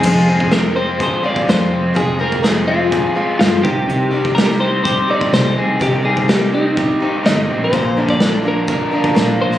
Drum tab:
CC |x---------------|----------------|----------------|----------------|
HH |----x---x---x---|x---x---x---x---|x---x---x---x---|x---x---x---x---|
SD |----o-------o---|----o-------o---|----oo------o---|----o-------o---|
BD |o--o----o--o----|o--o----o-----o-|---o----o--o----|o--o----o-------|

CC |----------------|
HH |x---x---x---x---|
SD |----o-------o--o|
BD |o--o----o--o----|